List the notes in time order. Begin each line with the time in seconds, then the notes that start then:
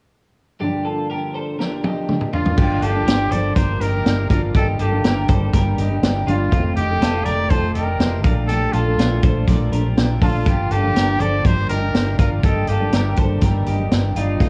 0.60 G2 D3 F3 A#3 D4 G4
0.85 F4 A4
1.10 G4 A#4
1.34 A4 C5
1.58 D3 F3 A#3 D4 G4 A#4, snare
1.84 D#4 G4, high tom
2.08 D3 F3 A#3 D4, mid tom
2.21 mid tom
2.33 D4 F4, floor tom
2.46 floor tom
2.57 G1 D3 F3 A#3 D4 G4, kick, crash
2.82 G1 F4 G4 A4, closed hi-hat
2.94 G2 D3 F3 A#3 D4
3.07 G1 G4 A#4, snare, closed hi-hat
3.31 G1 D3 F3 A#3 D4 A4 C5 D5, closed hi-hat
3.55 G1 G2 D3 F3 A#3 D4 G4 A#4 C5, kick, closed hi-hat
3.81 G1 D#4 G4 A#4, closed hi-hat
3.92 F3 A#3 D4
4.06 G1, snare, closed hi-hat
4.29 G1 D3 F3 A#3 D4 F4 A#4, kick, closed hi-hat
4.54 G1 D#3 G3 A#3 D4 D#4 G4 A4, kick, closed hi-hat
4.79 G1 F4 G4 A4, closed hi-hat
4.91 G2 D#3 G3 A#3 D4
5.04 G1 G4 A#4, snare, closed hi-hat
5.28 G1 D#3 G3 A#3 D4 A4 C5, kick, closed hi-hat
5.52 G1 G2 D#3 G3 A#3 D4 G4 A#4, kick, closed hi-hat
5.78 G1 D#4 G4, closed hi-hat
5.90 G3 A#3 D4
6.03 G1, snare, closed hi-hat
6.27 G1 D#3 G3 A#3 D4 F4, closed hi-hat
6.51 F1 C3 D#3 A3 C4 D#4 F4, kick, closed hi-hat
6.76 F1 D#4 G4, closed hi-hat
6.89 F2 C3 D#3 A3 D#4
7.01 F1 F4 A4, snare, closed hi-hat
7.24 F1 C3 D#3 A3 D#4 G4 A#4 D5, closed hi-hat
7.49 F1 F2 C3 D#3 A3 D#4 F4 A4 C5, kick, closed hi-hat
7.74 F1 D#4 G4 A#4, closed hi-hat
7.86 D#3 D#4
7.99 F1, snare, closed hi-hat
8.23 A#1 A#2 F3 A3 D4 F4 A#4, kick, closed hi-hat
8.47 A#2 F3 A3 D4 G4 A4, closed hi-hat
8.73 A#1 F4 A4, closed hi-hat
8.85 A#2 F3 A3 D4
8.98 A#1 F4 A#4, snare, closed hi-hat
9.22 A#1 A#2 F3 A3 D4 A4 C5, kick, closed hi-hat
9.47 A#1 A#2 F3 A3 D4 A#4 D5, kick, closed hi-hat
9.72 A#1 G4 A#4, closed hi-hat
9.84 F3 D4
9.97 A#1, snare, closed hi-hat
10.20 A#1 A#2 F3 A3 D4 F4 A4, kick, open hi-hat
10.46 G1 D3 F3 A#3 D4 G4, kick, closed hi-hat
10.71 G1 F4 G4 A4, closed hi-hat
10.83 G2 D3 F3 A#3 D4
10.95 G1 G4 A#4, snare, closed hi-hat
11.19 G1 D3 F3 A#3 D4 A4 C5 D5, closed hi-hat
11.44 G1 G2 D3 F3 A#3 D4 G4 A#4 C5, kick, closed hi-hat
11.69 G1 D#4 G4 A#4, closed hi-hat
11.81 F3 A#3 D4
11.94 G1, snare, closed hi-hat
12.18 G1 D3 F3 A#3 D4 F4 A#4, kick, closed hi-hat
12.43 G1 D#3 G3 A#3 D4 D#4 G4 A4, kick, closed hi-hat
12.67 G1 F4 G4 A4, closed hi-hat
12.79 G2 D#3 G3 A#3 D4
12.92 G1 G4 A#4, snare, closed hi-hat
13.16 G1 D#3 G3 A#3 D4 A4 C5, kick, closed hi-hat
13.41 G1 G2 D#3 G3 A#3 D4 G4 A#4, kick, closed hi-hat
13.66 G1 D#4 G4, closed hi-hat
13.78 G3 A#3 D4
13.91 G1, snare, closed hi-hat
14.15 G1 D#3 G3 A#3 D4 D#4 F4, closed hi-hat
14.40 F1 C3 D#3 A3 C4 D#4 F4, kick, closed hi-hat